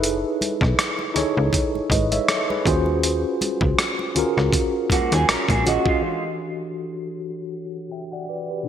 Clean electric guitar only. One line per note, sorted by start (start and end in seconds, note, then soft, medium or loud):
4.92 5.12 A#3 medium
4.92 5.11 F#4 medium
5.13 5.29 C4 medium
5.13 5.28 G#4 medium
5.29 5.48 C#4 medium
5.29 5.48 A#4 medium
5.50 5.66 C4 medium
5.50 5.65 G#4 medium
5.67 5.86 A#3 medium
5.67 5.86 F#4 medium
5.88 6.23 G#3 medium
5.88 6.23 F4 medium